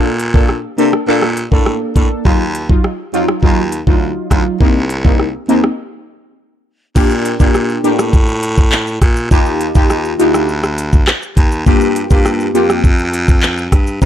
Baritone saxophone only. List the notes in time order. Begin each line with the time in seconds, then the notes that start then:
Already playing: A#2
0.78 C3
1.08 A#2
1.52 A2
1.96 A2
2.25 D#2
3.14 F2
3.43 D#2
3.87 D2
4.31 D2
4.61 C2
5.49 D#2
6.96 A#2
7.40 A#2
7.84 A2
9.02 A#2
9.31 D#2
9.75 D#2
10.19 D2
11.37 D#2
11.66 G2
12.11 G2
12.55 F2
13.72 G2
14.02 C3